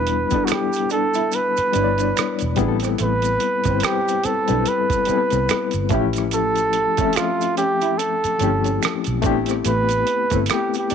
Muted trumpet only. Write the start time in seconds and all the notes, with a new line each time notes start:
Already playing: B4
0.45 F#4
0.52 G4
0.92 A4
1.35 B4
3.03 B4
3.84 G4
4.26 A4
4.69 B4
6.34 A4
7.16 F4
7.58 G4
7.98 A4
9.68 B4
10.53 G4
10.78 G4